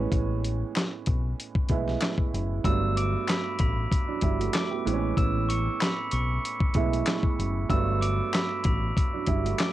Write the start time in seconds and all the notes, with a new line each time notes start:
Already playing: A2 E3 G#3 B3 C#4
0.12 A1, kick, closed hi-hat
0.44 closed hi-hat
0.75 finger snap, snare, clap, closed hi-hat
1.06 B1, kick, closed hi-hat
1.40 closed hi-hat
1.55 kick
1.69 B1 A2 E3 G#3 B3 E4, kick, closed hi-hat
1.88 snare
2.01 finger snap, snare, clap, closed hi-hat
2.18 kick
2.34 F#1, closed hi-hat
2.64 G1 G2 F#3 A3 B3 D4 E6 E7, kick, closed hi-hat
2.97 D6 D7, closed hi-hat
3.28 B5 B6, finger snap, snare, clap, closed hi-hat
3.59 A1 B5 B6, kick, closed hi-hat
3.92 kick, closed hi-hat
4.08 F#3 D4
4.21 G1 G3 E4, kick, closed hi-hat
4.40 A3 F#4, closed hi-hat
4.53 D6 D7, finger snap, snare, clap, closed hi-hat
4.71 B3 G4
4.85 A1 A2 E3 G#3 B3 C4, closed hi-hat
4.94 C#4
5.17 A1 E6 E7, kick, closed hi-hat
5.49 C#6 C#7, closed hi-hat
5.80 B5 B6, finger snap, snare, clap, closed hi-hat
6.11 B1 C#6 C#7, closed hi-hat
6.45 closed hi-hat
6.60 kick
6.74 B1 A2 E3 G#3 B3 E4, kick, closed hi-hat
6.93 closed hi-hat
7.06 finger snap, snare, clap, closed hi-hat
7.23 kick
7.39 F#1, closed hi-hat
7.69 G1 G2 F#3 A3 B3 D4 E6 E7, kick, closed hi-hat
8.01 D6 D7, closed hi-hat
8.33 B5 B6, finger snap, snare, clap, closed hi-hat
8.64 A1 B5 B6, kick, closed hi-hat
8.97 kick, closed hi-hat
9.13 F#3 D4
9.27 G1 G3 E4, kick, closed hi-hat
9.45 A3 F#4, closed hi-hat
9.58 D6 D7, finger snap, snare, clap, closed hi-hat